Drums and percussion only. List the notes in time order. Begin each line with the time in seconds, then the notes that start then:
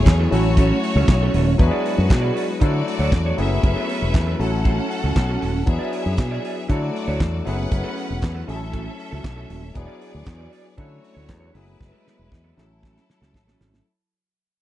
0.06 kick, snare, clap, closed hi-hat
0.33 open hi-hat
0.57 kick, closed hi-hat
0.84 open hi-hat
1.08 kick, snare, clap, closed hi-hat
1.34 open hi-hat
1.59 kick, closed hi-hat
1.86 open hi-hat
2.10 kick, snare, clap, closed hi-hat
2.37 open hi-hat
2.61 kick, closed hi-hat
2.88 open hi-hat
3.12 kick, snare, clap, closed hi-hat
3.38 open hi-hat
3.63 kick, closed hi-hat
3.89 open hi-hat
4.14 kick, snare, clap, closed hi-hat
4.41 open hi-hat
4.65 kick, closed hi-hat
4.91 open hi-hat
5.16 kick, snare, clap, closed hi-hat
5.42 open hi-hat
5.67 kick, closed hi-hat
5.93 open hi-hat
6.17 kick, snare, clap, closed hi-hat
6.45 open hi-hat
6.70 kick, closed hi-hat
6.96 open hi-hat
7.20 kick, snare, clap, closed hi-hat
7.47 open hi-hat
7.72 kick, closed hi-hat
7.97 open hi-hat
8.22 kick, snare, clap, closed hi-hat
8.49 open hi-hat
8.73 kick, closed hi-hat
9.00 open hi-hat
9.24 kick, snare, clap, closed hi-hat
9.50 open hi-hat
9.75 kick, closed hi-hat
10.02 open hi-hat
10.26 kick, snare, clap, closed hi-hat
10.53 open hi-hat
10.78 kick, closed hi-hat
11.04 open hi-hat
11.29 kick, snare, clap, closed hi-hat
11.55 open hi-hat
11.81 kick, snare
12.07 snare
12.32 kick, snare
12.58 snare
12.83 kick, snare
12.97 snare
13.10 snare
13.23 snare
13.34 kick, snare
13.48 snare
13.61 snare
13.74 snare